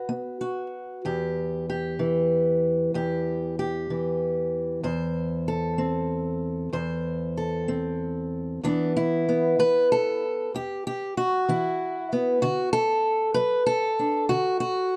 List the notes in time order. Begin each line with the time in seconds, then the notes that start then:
Already playing: F#4 B4
0.09 B3
0.41 F#4
1.05 E2 G4
1.70 G4
1.99 E3
2.94 E2 G4
3.59 G4
3.90 E3
4.83 E2 C5
5.48 A4
5.78 C4
6.73 E2 C5
7.37 A4
7.68 C4
8.63 E2 E3 B3 D4
8.97 E4
9.29 B3
9.59 E3 B4
9.92 A4
10.54 E2 G4
10.87 G4
11.17 F#4
11.49 E3 E4
12.13 B3
12.42 D3 F#4
12.73 A4
13.34 F#3 B4
13.66 A4
13.99 D4
14.29 D3 F#4
14.60 F#4